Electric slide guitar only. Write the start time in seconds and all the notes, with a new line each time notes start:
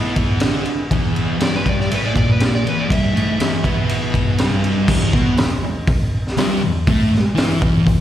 1.43 D5
1.56 B4
1.69 D5
1.82 D5
1.94 B4
2.05 D5
2.18 D5
2.32 B4
2.45 D5
2.55 D5
2.69 B4
2.79 D5
2.92 E5